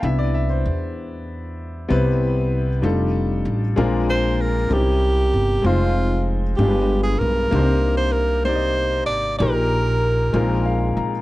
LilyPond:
<<
  \new Staff \with { instrumentName = "Tenor saxophone" } { \time 6/8 \key c \major \tempo 4. = 64 r2. | r2. | \key c \minor r8 c''8 bes'8 g'4. | f'4 r8 g'8. aes'16 bes'8~ |
bes'8. c''16 bes'8 c''4 d''8 | bes'2~ bes'8 r8 | }
  \new Staff \with { instrumentName = "Grand piano" } { \time 6/8 \key c \major << { e''16 d''16 e''16 c''2~ c''16 | r2. | \key c \minor r2. | r2. |
r2. | r2 f''8 bes''8 | } \\ { r2. | <g b c' e' b'>4~ <g b c' e' b'>16 r16 <g d' ees' f' a'>4~ <g d' ees' f' a'>16 r16 | <aes c' d' f' bes'>4~ <aes c' d' f' bes'>16 r16 <g c' des' ees' e' bes'>4~ <g c' des' ees' e' bes'>16 r16 | <aes c' ees' f' c''>4~ <aes c' ees' f' c''>16 r16 <aes d' f' g' aes' b'>4~ <aes d' f' g' aes' b'>16 r16 |
<bes d' ees' g' c''>4~ <bes d' ees' g' c''>16 r16 <bes ees' g' d'' ees''>4~ <bes ees' g' d'' ees''>16 r16 | <ees' g' bes'>4~ <ees' g' bes'>16 r16 <aes c' ees' f' bes'>4~ <aes c' ees' f' bes'>16 r16 | } >> }
  \new Staff \with { instrumentName = "Grand piano" } { \clef bass \time 6/8 \key c \major <b d' e'>8 r2 r8 | c4. r4. | \key c \minor bes,4. c4. | r4. g,4. |
c4. r4. | bes,4. bes,4. | }
  \new Staff \with { instrumentName = "Upright bass" } { \clef bass \time 6/8 \key c \major c,4 e,2 | c,4. f,,4 a,,8 | \key c \minor bes,,4. c,4 g,,8 | f,,4. g,,4 b,,8 |
c,2~ c,8 aes,,8 | bes,,4. bes,,4 bes,,8 | }
>>